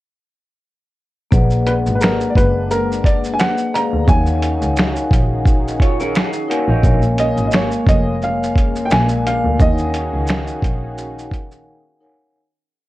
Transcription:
1.31 double bass A#1, analog synth pad G#3 A#3 D4, vibraphone A#3 G#4 B4 D5 F#5, kick, shaker
1.50 shaker
1.66 upright piano B4, closed hi-hat, shaker
1.86 double bass G#1, shaker
1.95 upright piano B4
2.01 upright piano A#4, finger snap, snare, shaker
2.20 shaker
2.30 upright piano D5
2.35 double bass F#1, upright piano B4, kick, closed hi-hat, shaker
2.71 upright piano A#4, shaker
2.92 shaker
3.04 upright piano D5, kick, closed hi-hat, shaker
3.24 shaker
3.33 upright piano G#5
3.39 upright piano F#5, finger snap, snare, shaker
3.58 shaker
3.73 vibraphone A#3 G#4 B4 D5 F5, upright piano A#5, closed hi-hat, shaker
3.93 double bass D2
4.05 double bass D#2, analog synth pad D#3 C#4 D#4 F#4 G#4, vibraphone D#4 A#4 C#5 F5 F#5, kick, shaker
4.09 upright piano G#5
4.14 vibraphone G#5
4.26 shaker
4.43 closed hi-hat, shaker
4.62 double bass C#2, shaker
4.76 finger snap, snare, shaker
4.96 shaker
5.11 double bass A#1, kick, closed hi-hat, shaker
5.45 kick, shaker
5.68 shaker
5.80 clean electric guitar F4 C#5, kick, closed hi-hat, shaker
6.00 clean electric guitar C#4 A#4, shaker
6.15 clean electric guitar G#4, finger snap, snare, shaker
6.33 shaker
6.48 clean electric guitar A#3 F#4, vibraphone D#4 A#4 C#5 F5 F#5 G#5, closed hi-hat, shaker
6.68 double bass A1, clean electric guitar F#3 D#4
6.83 double bass A#1, analog synth pad G#3 A#3, vibraphone A#3 A#4 C#5 F5 G#5, kick, shaker
7.02 shaker
7.18 upright piano D#5, closed hi-hat, shaker
7.37 double bass G#1, shaker
7.47 upright piano D#5
7.51 upright piano C#5, finger snap, snare, shaker
7.72 shaker
7.87 double bass F1, upright piano D#5, kick, closed hi-hat, shaker
8.22 upright piano F5, shaker
8.43 shaker
8.55 kick, closed hi-hat, shaker
8.76 shaker
8.85 vibraphone A#3 A#4, upright piano G5
8.89 double bass A#1, analog synth pad D4, vibraphone D5 F5 G#5, upright piano G#5, finger snap, snare, shaker
9.08 shaker
9.24 vibraphone A#3 A#4 D5 G#5, upright piano F5, closed hi-hat, shaker
9.44 double bass D2
9.58 double bass D#2, analog synth pad D#3 C#4 D#4 F#4 G#4, vibraphone D#4 A#4 C#5 F#5, upright piano D#5, kick, shaker
9.67 vibraphone G#5
9.78 shaker
9.94 closed hi-hat, shaker
10.14 double bass C#2
10.27 finger snap, snare, shaker
10.47 shaker
10.62 double bass A#1, kick, closed hi-hat, shaker
10.98 shaker
11.19 shaker
11.31 kick, closed hi-hat, shaker
11.52 shaker
12.00 vibraphone D#4 A#4 C#5 F5 F#5 G#5

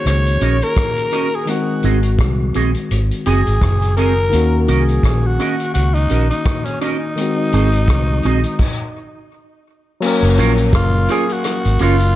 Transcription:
Already playing: tine electric piano D#3 A#3 C#4 D#4 F#4 G#4
0.06 fingered electric bass C#2, tenor saxophone C#5, cross-stick, closed hi-hat
0.26 closed hi-hat
0.41 fingered electric bass A#1, clean electric guitar C#4 F#4 A#4 D#5, closed hi-hat
0.61 tenor saxophone A#4, closed hi-hat
0.76 kick, cross-stick, closed hi-hat
0.96 closed hi-hat
1.12 clean electric guitar C#4 F#4 A#4 D#5, closed hi-hat
1.35 tenor saxophone G#4
1.46 tine electric piano D#3 G#3 C4, closed hi-hat
1.50 tenor saxophone F#4, tine electric piano F#4
1.83 fingered electric bass G#1, clean electric guitar C4 F#4 G#4 D#5, closed hi-hat
2.03 closed hi-hat
2.19 fingered electric bass C2, kick, cross-stick, closed hi-hat
2.54 fingered electric bass A#1, clean electric guitar C4 F#4 G#4 D#5, closed hi-hat
2.74 closed hi-hat
2.91 fingered electric bass G#1, closed hi-hat
3.11 closed hi-hat
3.26 fingered electric bass F#1, clean electric guitar C4 F#4 G#4 D#5, tenor saxophone G#4, closed hi-hat
3.47 fingered electric bass G#1, closed hi-hat
3.62 fingered electric bass F#1, kick, cross-stick, closed hi-hat
3.82 closed hi-hat
3.97 clean electric guitar C4 F#4 G#4 D#5, tenor saxophone A#4, closed hi-hat
4.29 fingered electric bass D#2, tine electric piano D#3 A#3, closed hi-hat
4.33 tine electric piano C#4 F#4
4.68 fingered electric bass C2, clean electric guitar C#4 F#4 A#4 D#5, closed hi-hat
4.79 tenor saxophone G#4
4.88 closed hi-hat
5.03 fingered electric bass A#1, kick, cross-stick, closed hi-hat
5.26 tenor saxophone F#4
5.39 clean electric guitar C#4 F#4 A#4 D#5, closed hi-hat
5.60 closed hi-hat
5.74 fingered electric bass C#2, tenor saxophone F#4, closed hi-hat
5.94 tenor saxophone D#4, closed hi-hat
6.10 fingered electric bass A#1, clean electric guitar C#4 F#4 A#4 D#5, closed hi-hat
6.30 tenor saxophone D#4, closed hi-hat
6.45 kick, cross-stick, closed hi-hat
6.65 tenor saxophone C#4, closed hi-hat
6.81 clean electric guitar C#4 F#4 A#4 D#5, tenor saxophone D#4, closed hi-hat
7.16 tine electric piano D#3 G#3 C4, closed hi-hat
7.21 tine electric piano F#4
7.52 fingered electric bass G#1, clean electric guitar C4 F#4 G#4 D#5, closed hi-hat
7.72 closed hi-hat
7.88 fingered electric bass C2, kick, cross-stick, closed hi-hat
8.23 fingered electric bass A#1, clean electric guitar C4 F#4 G#4 D#5, closed hi-hat
8.43 closed hi-hat
8.59 kick, crash
10.01 tine electric piano F#3 A#3, crash
10.05 tine electric piano C#4 A#4
10.23 fingered electric bass F#1
10.37 fingered electric bass A#1, clean electric guitar C#4 F4 A#4 C#5, closed hi-hat
10.57 closed hi-hat
10.73 fingered electric bass F#1, tenor saxophone F4, kick, cross-stick, closed hi-hat
11.08 clean electric guitar C#4 F4 A#4 C#5, tenor saxophone G#4, closed hi-hat
11.29 tenor saxophone F#4, closed hi-hat
11.44 cross-stick, closed hi-hat
11.65 fingered electric bass G#1, closed hi-hat
11.79 fingered electric bass F#1, clean electric guitar C#4 F4 A#4 C#5, closed hi-hat
11.83 tenor saxophone F4
12.00 closed hi-hat

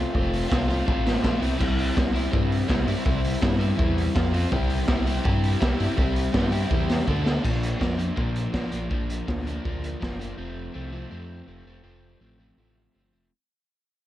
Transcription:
Already playing: overdriven electric guitar A3 C4 F4
0.13 analog synth bass F1, overdriven electric guitar A3 C4 F4, kick
0.33 open hi-hat
0.48 analog synth bass C2, overdriven electric guitar A3 C4 F4, kick, snare
0.68 overdriven electric guitar A3 C4 F4, open hi-hat
0.86 analog synth bass A1, overdriven electric guitar A3 C4 F4, kick
1.06 snare, open hi-hat
1.23 analog synth bass A#1, overdriven electric guitar A3 C4 F4, kick, snare
1.40 analog synth bass C2, overdriven electric guitar G3 C4 E4, open hi-hat
1.58 analog synth bass C2, overdriven electric guitar G3 C4 E4, kick, crash
1.79 open hi-hat
1.96 analog synth bass C2, overdriven electric guitar G3 C4 E4, kick, snare
2.13 overdriven electric guitar G3 C4 E4, open hi-hat
2.31 analog synth bass G2, overdriven electric guitar G3 C4 E4, kick
2.52 open hi-hat
2.68 analog synth bass C2, overdriven electric guitar G3 C4 E4, kick, snare
2.87 analog synth bass G2, overdriven electric guitar G3 C4 E4, open hi-hat
3.05 analog synth bass C2, overdriven electric guitar G3 C4 E4, kick
3.25 open hi-hat
3.41 analog synth bass G2, overdriven electric guitar G3 C4 E4, kick, snare
3.59 overdriven electric guitar G3 C4 E4, open hi-hat
3.76 analog synth bass E2, overdriven electric guitar G3 C4 E4, kick
3.98 open hi-hat
4.15 analog synth bass F2, overdriven electric guitar F3 C4 F4, kick, snare
4.33 overdriven electric guitar F3 C4 F4, open hi-hat
4.52 analog synth bass C2, overdriven electric guitar G3 C4 E4 G4, kick
4.70 open hi-hat
4.87 analog synth bass C2, overdriven electric guitar G3 C4 E4 G4, kick, snare
5.05 overdriven electric guitar G3 C4 E4 G4, open hi-hat
5.24 analog synth bass G2, overdriven electric guitar G3 C4 E4 G4, kick
5.44 open hi-hat
5.60 analog synth bass C2, overdriven electric guitar G3 C4 E4 G4, kick, snare
5.79 analog synth bass G2, overdriven electric guitar G3 C4 E4 G4, open hi-hat
5.97 analog synth bass C2, overdriven electric guitar G3 C4 E4 G4, kick
6.16 open hi-hat
6.32 analog synth bass G2, overdriven electric guitar G3 C4 E4 G4, kick, snare
6.51 overdriven electric guitar G3 C4 E4 G4, open hi-hat
6.69 analog synth bass E2, overdriven electric guitar G3 C4 E4 G4, kick
6.90 snare, open hi-hat
7.07 analog synth bass D2, overdriven electric guitar A3 D4 A4, kick
7.24 overdriven electric guitar A3 D4 A4, snare
7.42 analog synth bass A#1, overdriven electric guitar F3 A#3 D4, kick, crash
7.63 closed hi-hat
7.80 analog synth bass F2, overdriven electric guitar F3 A#3 D4, kick, snare
7.98 overdriven electric guitar F3 A#3 D4, closed hi-hat
8.16 analog synth bass A#2, overdriven electric guitar F3 A#3 D4, kick
8.36 closed hi-hat
8.53 analog synth bass A#1, overdriven electric guitar F3 A#3 D4, kick, snare
8.71 analog synth bass A#1, overdriven electric guitar F3 A#3 D4, closed hi-hat
8.90 analog synth bass A#1, overdriven electric guitar F3 A#3 D4, kick
9.10 closed hi-hat
9.27 analog synth bass D2, overdriven electric guitar F3 A#3 D4, kick, snare
9.46 overdriven electric guitar F3 A#3 D4, closed hi-hat
9.64 analog synth bass D2, overdriven electric guitar F3 A#3 D4, kick
9.84 closed hi-hat
10.00 analog synth bass F#1, overdriven electric guitar F3 A#3 D4, kick, snare
10.20 overdriven electric guitar F3 A#3 D4, closed hi-hat
10.37 analog synth bass F1, overdriven electric guitar F3 A3 C4
10.73 analog synth bass C2, overdriven electric guitar F3 A3 C4
10.92 overdriven electric guitar F3 A3 C4
11.10 analog synth bass F2, overdriven electric guitar F3 A3 C4
11.47 analog synth bass F1, overdriven electric guitar F3 A3 C4
11.66 analog synth bass F1, overdriven electric guitar F3 A3 C4
11.83 analog synth bass F1, overdriven electric guitar F3 A3 C4
12.21 analog synth bass A1, overdriven electric guitar F3 A3 C4
12.39 overdriven electric guitar F3 A3 C4
12.57 analog synth bass A1, overdriven electric guitar F3 A3 C4
12.94 analog synth bass G1, overdriven electric guitar F3 A3 C4
13.13 analog synth bass F1, overdriven electric guitar F3 A3 C4

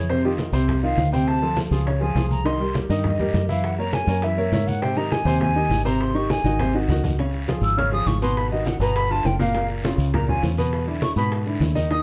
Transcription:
Already playing: fingered electric bass F2, flute C#5
0.09 grand piano C3 C4 C5, flute C5, high bongo, high conga, long guiro
0.24 grand piano D#3 D#4 F4, flute G4, high bongo, high conga
0.38 high bongo, high conga, short guiro
0.52 fingered electric bass C2, grand piano C3 C4 C5, high bongo, high conga, short guiro
0.68 high bongo, high conga, low conga, long guiro
0.83 grand piano D#3 D#4 F4, flute F5, high conga
0.97 fingered electric bass D2, high bongo, low bongo, high conga, short guiro
1.12 grand piano C3 C4 C5, flute G5, high bongo, high conga, short guiro
1.27 flute A5, high bongo, long guiro
1.42 grand piano F3 F4 A4, high bongo, high conga
1.57 high bongo, high conga, short guiro
1.71 fingered electric bass C#2, grand piano F3 F4 G#4, high bongo, short guiro
1.86 grand piano C#3 C#4 C#5, high bongo, long guiro
2.01 grand piano F3 F4 G#4, flute G#5, high conga
2.15 fingered electric bass C2, grand piano F3 F4 G#4, high bongo, low bongo, high conga, short guiro
2.31 flute A#5, high bongo, high conga, short guiro
2.45 grand piano D#3 D#4 D#5, flute C6, high bongo, high conga, long guiro
2.60 grand piano G3 G4 A#4, high bongo, high conga
2.75 high bongo, high conga, short guiro
2.89 fingered electric bass G2, grand piano D#3 D#4 D#5, high bongo, high conga, short guiro
3.04 flute D#5, high bongo, high conga, low conga, long guiro
3.19 grand piano G3 G4 A#4, high conga, low conga
3.34 fingered electric bass F#2, high bongo, low bongo, high conga, short guiro
3.49 grand piano E3 E4 E5, flute F5, high bongo, high conga, short guiro
3.64 flute F#5, high bongo, high conga, long guiro
3.78 grand piano A#3 A#4 C#5, flute A#5, high bongo, high conga
3.93 flute G#5, high bongo, high conga, short guiro
4.07 fingered electric bass F#2, grand piano A#3 A#4 C#5, high bongo, high conga, short guiro
4.22 grand piano E3 E4 E5, flute E5, high bongo, high conga, long guiro
4.38 grand piano A#3 A#4 C#5, high conga
4.52 fingered electric bass G#2, grand piano A#3 A#4 C#5, high bongo, low bongo, high conga, short guiro
4.67 flute F#5, high bongo, high conga, short guiro
4.82 grand piano C3 C4 C5, flute G5, high bongo, high conga, long guiro
4.97 grand piano D#3 D#4 G4, flute A#5, high bongo, high conga
5.12 flute G#5, high bongo, high conga, short guiro
5.25 fingered electric bass D#2, grand piano C3 C4 C5, high bongo, high conga, short guiro
5.41 flute G#5, high bongo, high conga, low conga, long guiro
5.56 grand piano D#3 D#4 G4, high conga
5.69 fingered electric bass G#1, high bongo, low bongo, high conga, short guiro
5.85 grand piano C3 C4 C5, flute A#5, high bongo, short guiro
6.00 flute C6, high bongo, high conga, long guiro
6.14 grand piano D#3 D#4 G4, flute C#6, high bongo, high conga
6.30 flute G#5, high bongo, high conga, short guiro
6.44 fingered electric bass G#1, grand piano D#3 D#4 F#4, high bongo, high conga, short guiro
6.59 grand piano C3 C4 C5, high bongo, low conga, long guiro
6.74 grand piano D#3 D#4 F#4
6.88 fingered electric bass C#2, grand piano D#3 D#4 F#4, high bongo, low bongo, low conga, short guiro
7.04 high bongo, low conga, short guiro
7.18 grand piano C#3 C#4 C#5, high bongo, high conga, long guiro
7.34 high bongo, high conga
7.48 grand piano F3 F4 G#4, high bongo, high conga, short guiro
7.61 fingered electric bass G#1, flute E6, high bongo, high conga, short guiro
7.77 grand piano C#3 C#4 C#5, flute F6, high bongo, high conga, low conga, long guiro
7.92 grand piano F3 F4 G#4, flute D#6, high conga
8.06 fingered electric bass G#1, flute C#6, high bongo, low bongo, high conga, short guiro
8.22 grand piano B2 B3 B4, flute C6, high bongo, short guiro
8.37 flute B5, high bongo, high conga, long guiro
8.51 grand piano D#3 D#4 F#4, flute D#5, high bongo, high conga
8.66 flute F#5, high bongo, high conga, short guiro
8.79 fingered electric bass G1, grand piano B2 B3 B4, flute A#5, high bongo, high conga, short guiro
8.96 flute B5, high bongo, high conga, long guiro
9.10 grand piano D3 D4 F4, flute A5, high conga
9.25 fingered electric bass F#1, flute G5, high bongo, low bongo, high conga, short guiro
9.39 grand piano A#2 A#3 A#4, flute F5, high bongo, high conga, short guiro
9.54 grand piano A#2 A#3 A#4, high bongo, high conga, long guiro
9.69 high bongo, high conga
9.84 grand piano C#3 C#4 F4, high bongo, high conga, short guiro
9.98 fingered electric bass C#2, high bongo, short guiro
10.13 grand piano A#2 A#3 A#4, flute A#5, high bongo, high conga, low conga, long guiro
10.28 grand piano C#3 C#4 F4, flute G#5, high conga, low conga
10.43 fingered electric bass E2, high bongo, low bongo, high conga, short guiro
10.57 grand piano B2 B3 B4, high bongo, high conga, short guiro
10.72 high bongo, high conga, long guiro
10.87 grand piano D3 D4 E4, high bongo, high conga
11.02 flute C#6, high bongo, high conga, short guiro
11.16 fingered electric bass G#2, grand piano B2 B3 B4, flute B5, high bongo, high conga, short guiro
11.32 high bongo, high conga, long guiro
11.46 grand piano D3 D4 E4, high conga
11.60 fingered electric bass D#2, high bongo, low bongo, high conga, short guiro
11.75 grand piano D#3 D#4 D#5, high bongo, high conga, short guiro
11.90 grand piano D#3 D#4 D#5, flute D#6, high bongo, high conga, long guiro

